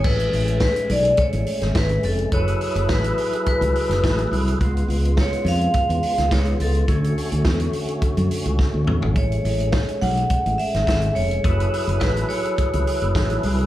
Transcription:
<<
  \new Staff \with { instrumentName = "Vibraphone" } { \time 4/4 \key fis \minor \tempo 4 = 105 b'4 b'8 d''8 cis''4 b'8 a'8 | cis''4 b'4 b'4. r8 | r4 cis''8 eis''8 eis''4 cis''8 a'8~ | a'4. r2 r8 |
cis''4. fis''4 e''8 e''8 cis''8~ | cis''4 b'8 cis''8 cis''4. r8 | }
  \new Staff \with { instrumentName = "Tonewheel organ" } { \time 4/4 \key fis \minor <gis a cis'>1 | <fis e' gis' a' b'>1 | <cis gis b eis'>1 | <d a cis' fis'>1 |
<gis a>1 | <fis e' gis' a' b'>1 | }
  \new Staff \with { instrumentName = "Fingered electric bass" } { \clef bass \time 4/4 \key fis \minor a,,8 a,,8. r16 b,,8 r16 a,,16 r16 gis,,16 gis,,8 eis,,8 | fis,,8 r16 fis,,16 a,,8 r8. cis,16 r16 fis,,16 a,,8 bis,,8 | cis,8 cis,8. r16 eis,8 r16 e,16 r16 cis,16 cis,8 cis,8 | d,8 r16 d,16 e,8 r8. fis,16 r16 cis,16 r16 d,16 e,16 gis,,16 |
a,,8 a,,8. r16 b,,8 r16 a,,16 r16 gis,,16 gis,,8 eis,,8 | fis,,8 r16 fis,,16 a,,8 r8. cis,16 r16 fis,,16 a,,8 bis,,8 | }
  \new DrumStaff \with { instrumentName = "Drums" } \drummode { \time 4/4 <cymc bd>16 hh16 hho16 hh16 <hh bd sn>16 hh16 hho16 hh16 <hh bd>16 hh16 hho16 <hh sn>16 <hh bd sn>16 hh16 hho16 hh16 | <hh bd>16 hh16 hho16 hh16 <hh bd sn>16 hh16 hho16 hh16 <hh bd>16 hh16 hho16 <hh sn>16 <hh bd sn>16 hh16 hho16 hh16 | <hh bd>16 hh16 hho16 hh16 <hh bd sn>16 hh16 hho16 hh16 <hh bd>16 hh16 hho16 <hh sn>16 <hh bd sn>16 hh16 hho16 hh16 | <hh bd>16 hh16 hho16 hh16 <hh bd sn>16 hh16 hho16 hh16 <hh bd>16 hh16 hho16 hh16 <bd sn>8 toml16 tomfh16 |
<hh bd>16 hh16 hho16 hh16 <hh bd sn>16 hh16 hho16 hh16 <hh bd>16 hh16 hho16 <hh sn>16 <hh bd sn>16 hh16 hho16 hh16 | <hh bd>16 hh16 hho16 hh16 <hh bd sn>16 hh16 hho16 hh16 <hh bd>16 hh16 hho16 hh16 <hh bd sn>16 hh16 hho16 hh16 | }
>>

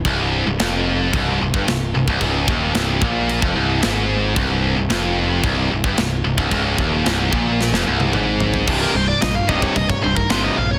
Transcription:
<<
  \new Staff \with { instrumentName = "Lead electric guitar" } { \time 4/4 \key c \phrygian \tempo 4 = 111 r1 | r1 | r1 | r1 |
r16 bes'16 c''16 d''16 ees''16 f''16 ees''16 des''16 ees''16 des''16 c''16 bes'16 c''16 ees''16 f''16 des''16 | }
  \new Staff \with { instrumentName = "Analog synth pad" } { \time 4/4 \key c \phrygian r1 | r1 | r1 | r1 |
<c g c' ees'>1 | }
  \new Staff \with { instrumentName = "Distorted electric guitar" } { \clef bass \time 4/4 \key c \phrygian c,8. c,16 f,4 c,8 c,16 g,16 c,8 c,16 c,16 | des,8 ees,8 c,8 bes,8. f,16 c,8 aes,4 | c,8. c,16 f,4 c,8 c,16 g,16 c,8 c,16 c,16 | des,8 ees,8 c,8 bes,8. f,16 c,8 aes,4 |
<c, g, c>8 <c, g,>8 <c, g,>8 <c, g, c>8 <c, g,>8 <c, g,>8 <c, g, c>8 <c, g,>8 | }
  \new Staff \with { instrumentName = "Distorted electric guitar" } { \clef bass \time 4/4 \key c \phrygian c,8. c,16 f,4 c,8 c,16 g,16 c,8 c,16 c,16 | des,8 ees,8 c,8 bes,8. f,16 c,8 aes,4 | c,8. c,16 f,4 c,8 c,16 g,16 c,8 c,16 c,16 | des,8 ees,8 c,8 bes,8. f,16 c,8 aes,4 |
<c, g, c>8 <c, g,>8 <c, g,>8 <c, g, c>8 <c, g,>8 <c, g,>8 <c, g, c>8 <c, g,>8 | }
  \new Staff \with { instrumentName = "Picked electric bass" } { \clef bass \time 4/4 \key c \phrygian c,,8. c,,16 f,,4 c,,8 c,,16 g,,16 c,,8 c,,16 c,,16 | des,,8 ees,,8 c,,8 bes,,8. f,,16 c,,8 aes,,4 | c,,8. c,,16 f,,4 c,,8 c,,16 g,,16 c,,8 c,,16 c,,16 | des,,8 ees,,8 c,,8 bes,,8. f,,16 c,,8 aes,,4 |
c,,8 c,,8 bes,,8 c,,8 c,,8 c,,8 g,,8 bes,,8 | }
  \new DrumStaff \with { instrumentName = "Drums" } \drummode { \time 4/4 <cymc bd>4 <cymc sn>4 <cymc bd>8. bd16 <cymc sn>8. bd16 | <cymc bd>8 bd8 <cymc sn>8 bd8 cymc16 bd8. <cymc sn>4 | <cymc bd>4 <cymc sn>4 <cymc bd>8. bd16 <cymc sn>8. bd16 | <cymc bd>8 bd8 <cymc sn>8 bd8 sn16 sn8 tommh16 toml8 tomfh16 tomfh16 |
<cymc bd>4 <cymc sn>8 bd16 bd16 <cymc bd>16 bd8 bd16 <cymc sn>4 | }
>>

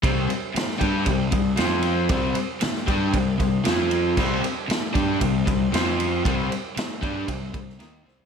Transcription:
<<
  \new Staff \with { instrumentName = "Overdriven electric guitar" } { \clef bass \time 4/4 \key f \major \tempo 4 = 116 <c g c'>8 r4 <g d' g'>8 <c g>8 <c g>8 <f c' f'>4 | <c g c'>8 r4 <g d' g'>8 <c g>8 <c g>8 <f c' f'>4 | <c g c'>8 r4 <g d' g'>8 <c g>8 <c g>8 <f c' f'>4 | <c g c'>8 r4 <g d' g'>8 <c g>8 <c g>8 <ees bes ees'>8 <c g c'>8 | }
  \new Staff \with { instrumentName = "Picked electric bass" } { \clef bass \time 4/4 \key f \major c,8 r4 g,8 c,8 c,8 f,4 | c,8 r4 g,8 c,8 c,8 f,4 | c,8 r4 g,8 c,8 c,8 f,4 | c,8 r4 g,8 c,8 c,8 ees,8 c,8 | }
  \new DrumStaff \with { instrumentName = "Drums" } \drummode { \time 4/4 <bd cymr>8 cymr8 <cymr sn>16 sn16 <bd cymr>8 <bd cymr>8 <bd cymr>8 <cymr sn>8 cymr8 | <bd cymr>8 cymr8 <cymr sn>16 sn16 <bd cymr>8 <bd cymr>8 <bd cymr>8 <cymr sn>8 cymr8 | <cymc bd>8 cymr8 <cymr sn>8 <bd cymr>8 <bd cymr>8 <bd cymr>8 <cymr sn>8 cymr8 | <bd cymr>8 cymr8 <cymr sn>8 <bd cymr>8 <bd cymr>8 <bd cymr>16 sn16 <cymr sn>8 sn16 tomfh16 | }
>>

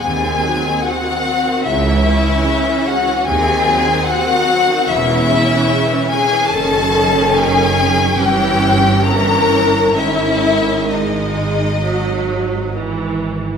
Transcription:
<<
  \new Staff \with { instrumentName = "Violin section" } { \time 4/4 \key gis \phrygian \tempo 4 = 72 gis''4 fis''4 e''4. fis''8 | gis''4 fis''4 e''4. gis''8 | a''4 gis''4 g''4 bes''4 | e''4 dis''2 r4 | }
  \new Staff \with { instrumentName = "Violin section" } { \time 4/4 \key gis \phrygian gis'4 fis'4 e'4. fis'8 | gis'4 fis'4 e'4. gis'8 | a'4 gis'4 g'4 bes'4 | e'4 dis'2 r4 | }
  \new Staff \with { instrumentName = "Viola section" } { \clef bass \time 4/4 \key gis \phrygian << { bis2 cis'2 | bis2 cis'2 | cis'2 des'4 des'4 | cis'4 gis4 fis4 e4 | } \\ { bis,16 dis16 fis16 dis16 bis,16 dis16 fis16 dis16 cis16 e16 cis16 e16 cis16 e16 cis16 e16 | bis,16 dis16 fis16 dis16 bis,16 dis16 fis16 dis16 cis16 e16 cis16 e16 cis16 e16 cis16 e16 | dis2 e4 e4 | dis4 r2. | } >> }
  \new Staff \with { instrumentName = "Cello section" } { \clef bass \time 4/4 \key gis \phrygian dis,4 r4 cis,4 r4 | dis,4 r4 e,4 r4 | fis,2 g,2 | gis,2.~ gis,8. r16 | }
  \new Staff \with { instrumentName = "Double bass section" } { \clef bass \time 4/4 \key gis \phrygian dis,4 r4 cis,4 r4 | dis,4 r4 e,,4 r4 | fis,,2 g,,2 | gis,,2.~ gis,,8. r16 | }
>>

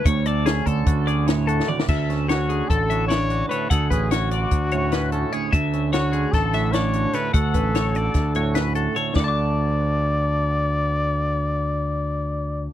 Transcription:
<<
  \new Staff \with { instrumentName = "Clean electric guitar" } { \time 9/8 \key d \lydian \tempo 4. = 99 cis''8 d''8 gis'8 a'4 d''8 cis''8 a'8 d''8 | e''4 cis''8 gis'8 a'8 e''8 d'4 cis''8 | fis''8 b'8 cis''8 d''4 cis''8 b'8 a'8 cis''8 | e''4 cis''8 gis'8 a'8 e''8 d'4 cis''8 |
fis''8 b'8 cis''8 d''4 cis''8 b'8 a'8 cis''8 | <d'' fis'' a'' d'''>1~ <d'' fis'' a'' d'''>8~ | <d'' fis'' a'' d'''>1~ <d'' fis'' a'' d'''>8 | }
  \new Staff \with { instrumentName = "Trumpet" } { \time 9/8 \key d \lydian r1 r8 | r4 fis'4 a'4 cis''4 b'8 | a'8 gis'8 fis'2. r8 | r4 fis'4 a'4 cis''4 b'8 |
a'2.~ a'8 r4 | d''1~ d''8~ | d''1~ d''8 | }
  \new Staff \with { instrumentName = "Clean electric guitar" } { \time 9/8 \key d \lydian << { r8 a'8 cis'4 fis'8 gis'4 fis'4 | a'8 cis'8 cis'8 cis'4 fis'8 cis'8 fis'8 a'8 | gis'8 cis'8 cis'8 r4 cis'8 cis'8 cis'8 gis'8 | a'8 cis'8 cis'8 cis'4 fis'8 cis'8 fis'8 a'8 |
fis'8 cis'8 fis'4. fis'8 cis'8 fis'8 a'8 | <d fis'>1~ <d fis'>8~ | <d fis'>1~ <d fis'>8 | } \\ { <d, d>4. d4. a,4 d,8 | d,4. d4 a,4. d,8 | d,4. d4 a,4. d,8 | d,4. d4 a,4. d,8 |
d,4. d4 a,4. d,8 | d,1~ d,8~ | d,1~ d,8 | } >> }
  \new Staff \with { instrumentName = "Fingered electric bass" } { \clef bass \time 9/8 \key d \lydian d,4. d,8 d,2 r8 | d,2 a,,2 r8 | d,8 a,,4. d,2 r8 | d,2 a,,2 r8 |
d,8 a,,4. d,2 r8 | d,1~ d,8~ | d,1~ d,8 | }
  \new DrumStaff \with { instrumentName = "Drums" } \drummode { \time 9/8 <hh bd>8 hh8 <hh sn>8 <hh bd>8 <hh bd>8 hh8 <hh sn>8 hh16 sn16 toml16 sn16 | <cymc bd>8 <hh sn>8 <hh sn>8 hh8 <hh bd>8 hh8 <hh sn>8 hh8 hh8 | <hh bd>8 <hh bd>8 <hh sn>8 hh8 <hh bd>8 hh8 <hh sn>8 hh8 hh8 | <hh bd>8 hh8 <hh sn>8 hh8 <hh bd sn>8 <hh sn>8 <hh sn>8 hh8 <hh sn>8 |
<hh bd>8 <hh bd>8 <hh sn>8 hh8 <hh bd sn>8 hh8 <hh sn>8 hh8 hh8 | <bd sn>4 r4 r4 r4. | r4 r4 r4 r4. | }
>>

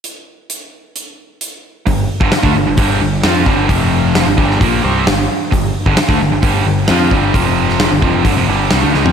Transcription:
<<
  \new Staff \with { instrumentName = "Distorted electric guitar" } { \clef bass \time 4/4 \key f \lydian \tempo 4 = 132 r1 | <g, d>8 r16 <g, d>16 r16 <d a>16 <g, d>16 <g, d>16 <g, d g>8 <g, d>8 <f c' f'>8 <g, d g>8 | <f, c f>4~ <f, c f>16 <g, d>16 <g, d g>8 <bes, f bes>8 <c g c'>8 <g, d>8 r8 | <g, d>8 r16 <g, d>16 r16 <d a>16 <g, d>16 <g, d>16 <g, d g>8 <g, d>8 <f c' f'>8 <g, d g>8 |
<f, c f>4~ <f, c f>16 <g, d>16 <f, c f>8 <g, d>16 <f, c>16 <g, d g>8 <c g>16 <d a>16 <cis aes>16 <f c'>16 | }
  \new Staff \with { instrumentName = "Overdriven electric guitar" } { \clef bass \time 4/4 \key f \lydian r1 | <g, d>8 r16 <g, d>16 r16 <d a>16 <g, d>16 <g, d>16 <g, d g>8 <g, d>8 <f c' f'>8 <g, d g>8 | <f, c f>4~ <f, c f>16 <g, d>16 <g, d g>8 <bes, f bes>8 <c g c'>8 <g, d>8 r8 | <g, d>8 r16 <g, d>16 r16 <d a>16 <g, d>16 <g, d>16 <g, d g>8 <g, d>8 <f c' f'>8 <g, d g>8 |
<f, c f>4~ <f, c f>16 <g, d>16 <f, c f>8 <g, d>16 <f, c>16 <g, d g>8 <c g>16 <d a>16 <cis aes>16 <f c'>16 | }
  \new Staff \with { instrumentName = "Picked electric bass" } { \clef bass \time 4/4 \key f \lydian r1 | g,,8 r16 g,,16 r16 d,16 g,,16 g,,16 g,,8 g,,8 f,8 g,,8 | f,,4~ f,,16 g,,16 g,,8 bes,,8 c,8 g,,8 r8 | g,,8 r16 g,,16 r16 d,16 g,,16 g,,16 g,,8 g,,8 f,8 g,,8 |
f,,4~ f,,16 g,,16 f,,8 g,,16 f,,16 g,,8 c,16 d,16 cis,16 f,16 | }
  \new DrumStaff \with { instrumentName = "Drums" } \drummode { \time 4/4 hh4 hh4 hh4 hh4 | <hho bd>8. bd16 <hho sn>16 bd8. <hho bd>4 <hho sn>8 bd8 | <hho bd>4 <hho sn>8 bd16 sn16 <hho bd>4 <hho sn>4 | <hho bd>8. bd16 <hho sn>16 bd8. <hho bd>4 <hho sn>8 bd8 |
<hho bd>8. sn16 <hho sn>8 bd8 <hho bd>4 <hho sn>8 sn16 tomfh16 | }
>>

